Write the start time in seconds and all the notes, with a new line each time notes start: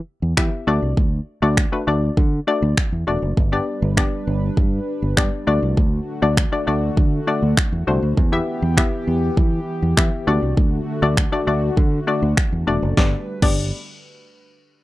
0.22 E2
0.37 E3 B3 E4 G4 E5, finger snap, kick
0.67 D2 A3 D4 F#4 D5
0.82 C2
0.97 D2, kick
1.42 D2 A3 D4 F#4 D5
1.57 finger snap, kick
1.72 A3 D4 F#4 B4
1.87 D2 A3 D4 F#4 D5
2.17 D3, kick
2.47 A3 D4 F#4 D5
2.62 D2
2.77 finger snap, kick
2.92 E2
3.07 E1 A3 D4 F#4 D5
3.22 F#1
3.37 G1 G3 D4 B4, kick
3.52 B3 D4 G4 D5
3.82 G1
3.97 B3 D4 G4 D5, finger snap, kick
4.27 G1
4.57 G2, kick
5.02 G1
5.17 G2 B3 D4 G4 D5, finger snap, kick
5.47 D2 D3 A3 D4 F#4 D5
5.62 C2
5.77 D2, kick
6.22 D2 A3 D4 F#4 D5
6.37 finger snap, kick
6.52 A3 D4 F#4 D5
6.67 D2 A3 D4 F#4 D5
6.97 D3, kick
7.27 A3 D4 F#4 D5
7.42 D2
7.57 finger snap, kick
7.72 E2
7.87 C2 A3 D4 F#4 C5
8.02 D2
8.17 E2 E3 B3 G4, kick
8.32 B3 E4 G4 E5
8.62 E2
8.77 B3 E4 G4 E5, finger snap, kick
9.07 E2
9.37 E3, kick
9.82 E2
9.97 E3 B3 E4 G4 E5, finger snap, kick
10.27 D2 D3 A3 D4 F#4 D5
10.42 C2
10.57 D2, kick
11.02 D2 A3 D4 F#4 D5
11.17 finger snap, kick
11.32 A3 D4 F#4 D5
11.47 D2 A3 D4 F#4 D5
11.77 D3, kick
12.07 A3 D4 F#4 D5
12.22 D2
12.37 finger snap, kick
12.52 E2
12.67 E1 A3 D4 F#4 D5
12.82 F#1
12.97 G1 G3 B3 D4 G4 B4 D5, kick, snare
13.42 G1 B3 D4 G4 D5, kick, crash